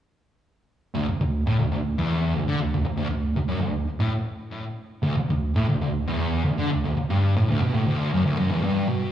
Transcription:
0.95 1.06 D2 loud
1.08 muted distorted electric guitar stroke medium
1.21 1.40 D2 medium
1.47 1.57 A2 loud
1.59 1.71 D2 medium
1.72 1.91 D2 medium
1.98 2.34 E2 medium
2.35 2.47 D2 medium
2.48 2.59 D3 medium
2.60 2.73 D2 medium
2.74 2.84 D2 medium
2.85 muted distorted electric guitar stroke medium
2.97 3.08 D2 loud
3.10 3.30 D2 medium
3.36 3.48 D2 medium
3.48 3.61 F#2 loud
3.61 3.82 D2 medium
4.00 4.12 A2 loud
5.03 5.15 D2 loud
5.17 muted distorted electric guitar stroke medium
5.30 5.50 D2 medium
5.56 5.67 A2 loud
5.69 5.81 D2 medium
5.82 6.01 D2 medium
6.07 6.44 E2 loud
6.45 6.57 D2 medium
6.59 6.70 D3 medium
6.73 6.84 D2 medium
6.85 6.96 D2 medium
6.97 muted distorted electric guitar stroke medium
7.10 7.34 G2 loud
7.36 7.47 A2 loud
7.49 7.60 D2 loud
7.62 7.72 B2 loud
7.74 7.85 A2 loud
7.86 8.10 D2 loud
8.13 8.24 F#2 loud
8.24 8.36 D2 loud
8.38 8.49 F#2 loud
8.51 8.62 E2 loud
8.64 8.88 G2 medium
8.89 9.12 B2 loud

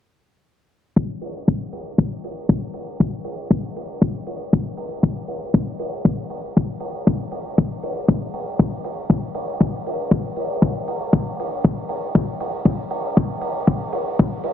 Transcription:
0.96 kick loud
1.21 open hi-hat medium
1.48 kick medium
1.73 open hi-hat medium
1.98 kick loud
2.24 open hi-hat loud
2.49 kick medium
2.74 open hi-hat medium
3.00 kick loud
3.25 open hi-hat loud
3.50 kick loud
3.76 open hi-hat medium
4.02 kick loud
4.27 open hi-hat medium
4.53 kick medium
4.77 open hi-hat medium
5.03 kick medium
5.28 open hi-hat loud
5.54 kick medium
5.79 open hi-hat loud
6.05 kick loud
6.30 open hi-hat medium
6.57 kick medium
6.80 open hi-hat medium
7.07 kick loud
7.32 open hi-hat loud
7.58 kick loud
7.83 open hi-hat loud
8.08 kick loud
8.34 open hi-hat loud
8.59 kick medium
8.85 open hi-hat medium
9.10 kick loud
9.35 open hi-hat loud
9.61 kick loud
9.87 open hi-hat medium
10.11 kick loud
10.36 open hi-hat medium
10.62 kick medium
10.88 open hi-hat medium
11.13 kick medium
11.40 open hi-hat medium
11.64 kick loud
11.89 open hi-hat medium
12.15 kick loud
12.41 open hi-hat loud
12.65 kick medium
12.91 open hi-hat medium
13.17 kick medium
13.41 open hi-hat medium
13.67 kick medium
13.93 open hi-hat medium
14.19 kick medium
14.44 open hi-hat loud

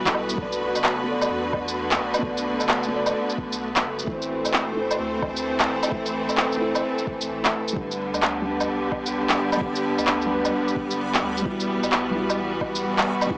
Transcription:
0.00 0.14 E1 loud
0.00 0.38 E3 medium
0.00 0.05 G3 medium
0.00 0.38 G3 medium
0.00 4.07 B3 medium
0.00 0.07 E4 medium
0.00 0.40 F#4 loud
0.00 5.49 F#4 medium
0.00 4.07 B4 medium
0.05 0.35 G3 medium
0.05 0.36 E4 medium
0.05 kick medium
0.05 clap loud
0.05 shaker soft
0.09 0.36 A4 medium
0.14 0.36 B1 loud
0.14 low woodblock medium
0.29 shaker medium
0.34 0.74 B1 loud
0.34 4.07 D3 medium
0.34 1.02 B3 medium
0.34 1.05 A4 medium
0.34 kick loud
0.42 1.07 D5 medium
0.52 7.77 A3 medium
0.52 shaker soft
0.75 1.29 F#1 loud
0.75 low woodblock soft
0.75 shaker medium
0.84 clap loud
1.04 2.17 B3 medium
1.04 2.21 A4 medium
1.11 2.23 D5 medium
1.22 low woodblock medium
1.22 shaker medium
1.30 1.99 E2 medium
1.53 kick loud
1.53 low woodblock soft
1.68 shaker medium
1.91 clap loud
1.91 shaker soft
2.00 2.13 B1 medium
2.14 low woodblock medium
2.14 shaker medium
2.18 2.87 B3 medium
2.23 2.58 B1 loud
2.23 2.90 A4 medium
2.23 kick loud
2.27 2.92 D5 loud
2.37 shaker soft
2.60 3.14 F#1 loud
2.60 low woodblock soft
2.60 shaker medium
2.69 clap loud
2.83 shaker soft
2.88 4.03 B3 medium
2.88 4.05 A4 medium
2.96 4.07 D5 loud
3.06 low woodblock medium
3.06 shaker medium
3.30 shaker soft
3.38 kick loud
3.53 3.83 B1 loud
3.53 shaker medium
3.76 clap loud
3.76 shaker soft
3.84 4.06 F#1 loud
3.99 shaker medium
4.04 4.43 A1 loud
4.04 7.77 E3 medium
4.04 4.71 A3 medium
4.04 4.75 E4 medium
4.04 kick loud
4.12 7.77 C4 medium
4.12 4.77 C5 medium
4.22 shaker soft
4.34 7.76 C5 medium
4.45 4.98 E1 loud
4.45 8.95 A4 medium
4.45 low woodblock soft
4.45 shaker medium
4.54 clap loud
4.72 5.86 A3 medium
4.76 5.90 E4 medium
4.76 5.92 C5 medium
4.91 low woodblock medium
4.91 shaker medium
5.00 5.68 D2 medium
5.22 kick loud
5.22 low woodblock soft
5.37 shaker medium
5.60 clap loud
5.60 shaker soft
5.69 5.82 A1 medium
5.83 low woodblock medium
5.83 shaker medium
5.88 6.28 A1 loud
5.88 6.56 A3 medium
5.88 6.59 E4 medium
5.88 kick loud
5.96 6.61 C5 medium
6.06 shaker soft
6.29 6.83 E1 loud
6.29 low woodblock soft
6.29 shaker medium
6.37 clap loud
6.52 shaker soft
6.57 7.40 A3 medium
6.61 7.42 E4 medium
6.61 7.44 C5 loud
6.75 low woodblock medium
6.75 shaker medium
6.98 shaker soft
7.07 kick loud
7.21 7.29 A1 medium
7.21 shaker medium
7.30 7.52 A1 loud
7.43 7.73 A3 medium
7.43 7.75 E4 medium
7.43 clap loud
7.43 shaker soft
7.47 7.75 E5 medium
7.53 7.75 E1 medium
7.68 shaker medium
7.73 8.12 G1 loud
7.73 8.40 G3 medium
7.73 13.38 B5 medium
7.73 kick loud
7.77 11.46 D3 loud
7.77 8.44 D4 medium
7.77 8.46 B4 medium
7.89 13.38 B3 medium
7.89 shaker soft
7.94 13.38 G3 medium
8.06 11.45 G4 medium
8.14 8.68 D2 loud
8.14 low woodblock soft
8.14 shaker medium
8.22 clap loud
8.42 9.55 G3 medium
8.42 13.38 B4 medium
8.46 9.59 D4 medium
8.50 9.61 B4 medium
8.61 low woodblock medium
8.61 shaker medium
8.69 9.37 B1 medium
8.92 kick loud
8.92 low woodblock soft
9.06 shaker medium
9.29 clap loud
9.29 shaker soft
9.38 9.51 G1 medium
9.53 low woodblock medium
9.53 shaker medium
9.57 10.25 G3 medium
9.61 9.97 G1 loud
9.61 10.28 D4 medium
9.61 kick loud
9.65 10.30 B4 loud
9.76 shaker soft
9.98 10.52 D2 loud
9.98 low woodblock soft
9.98 shaker medium
10.07 clap loud
10.21 shaker soft
10.26 11.40 G3 loud
10.30 11.44 D4 medium
10.30 11.45 B4 loud
10.45 low woodblock medium
10.45 shaker medium
10.68 shaker soft
10.76 kick loud
10.91 11.21 G1 loud
10.91 shaker medium
11.14 clap loud
11.14 shaker soft
11.22 11.44 D2 loud
11.37 shaker medium
11.42 11.81 E1 loud
11.42 12.09 G3 medium
11.42 12.13 E4 medium
11.42 kick loud
11.46 13.38 E3 medium
11.46 12.15 F#4 medium
11.60 shaker soft
11.83 12.37 B1 loud
11.83 13.38 F#4 medium
11.83 low woodblock soft
11.83 shaker medium
11.92 clap loud
12.11 13.25 G3 medium
12.11 13.28 E4 medium
12.19 13.30 F#4 loud
12.30 low woodblock medium
12.30 shaker medium
12.38 13.06 A1 loud
12.61 kick loud
12.61 low woodblock soft
12.75 shaker medium
12.98 clap loud
12.98 shaker soft
13.07 13.21 E1 medium
13.22 low woodblock medium
13.22 shaker medium
13.26 13.38 G3 medium
13.30 13.38 E1 loud
13.30 13.38 E4 medium
13.30 kick loud
13.34 13.38 F#4 loud

